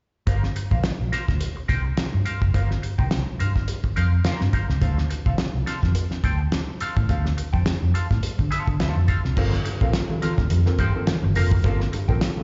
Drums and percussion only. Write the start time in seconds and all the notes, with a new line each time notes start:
0.27 kick, closed hi-hat
0.43 snare
0.56 closed hi-hat
0.71 kick
0.84 snare, closed hi-hat
1.13 snare, closed hi-hat
1.28 kick, snare
1.41 closed hi-hat
1.69 kick, closed hi-hat
1.97 snare, closed hi-hat
2.26 closed hi-hat
2.42 kick
2.54 kick, closed hi-hat
2.71 snare
2.83 closed hi-hat
2.99 kick
3.11 snare, closed hi-hat
3.40 closed hi-hat
3.56 kick, snare
3.68 closed hi-hat
3.84 kick
3.97 closed hi-hat
4.24 snare, closed hi-hat
4.41 snare
4.53 kick, closed hi-hat
4.69 snare
4.82 kick, closed hi-hat
4.98 snare
5.11 closed hi-hat
5.26 kick
5.38 snare, closed hi-hat
5.67 snare, closed hi-hat
5.83 kick, snare
5.95 closed hi-hat
6.11 snare
6.24 kick, closed hi-hat
6.52 snare, closed hi-hat
6.80 closed hi-hat
6.97 kick
7.09 kick, closed hi-hat
7.26 snare
7.38 closed hi-hat
7.54 kick
7.66 snare, closed hi-hat
7.95 closed hi-hat
8.11 kick, snare
8.23 closed hi-hat
8.39 kick
8.52 closed hi-hat
8.68 kick
8.80 snare, closed hi-hat
9.08 kick, closed hi-hat
9.25 snare
9.37 kick, crash, muted conga, low conga
9.53 snare, muted conga
9.66 closed hi-hat
9.81 kick
9.93 snare, closed hi-hat
10.10 high conga
10.22 snare, closed hi-hat, high conga
10.37 kick, snare, low conga
10.50 closed hi-hat
10.66 snare, muted conga
10.79 kick, closed hi-hat, high conga
11.07 snare, closed hi-hat, muted conga, high conga
11.22 high conga
11.35 open hi-hat, low conga
11.52 kick
11.64 kick, closed hi-hat, muted conga, low conga
11.80 snare
11.93 closed hi-hat
12.09 kick
12.21 snare, closed hi-hat
12.37 high conga